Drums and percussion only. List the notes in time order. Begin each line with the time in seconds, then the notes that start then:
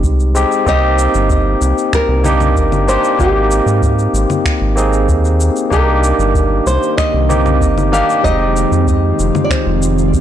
0.03 kick, shaker
0.20 shaker
0.36 shaker
0.52 shaker
0.67 kick, shaker
0.99 shaker
1.15 shaker
1.30 kick, shaker
1.62 shaker
1.78 shaker
1.93 finger snap, kick, shaker
2.25 low conga, shaker
2.40 low conga, shaker
2.56 kick, shaker
2.72 low conga, shaker
2.89 shaker
3.04 shaker
3.19 kick, shaker
3.51 shaker
3.67 shaker
3.82 kick, shaker
3.99 shaker
4.15 shaker
4.30 low conga, shaker
4.45 finger snap, kick, shaker
4.78 shaker
4.93 shaker
5.09 kick, shaker
5.25 shaker
5.40 shaker
5.56 shaker
5.72 kick, shaker
6.04 shaker
6.20 shaker
6.35 kick, shaker
6.67 shaker
6.83 shaker
6.98 finger snap, kick, shaker
7.30 low conga, shaker
7.46 low conga, shaker
7.61 kick, shaker
7.78 low conga, shaker
7.94 shaker
8.10 shaker
8.24 kick, shaker
8.57 shaker
8.72 shaker
8.87 kick, shaker
9.20 shaker
9.35 low conga, shaker
9.50 finger snap, kick, shaker
9.82 shaker
9.98 shaker
10.13 kick, shaker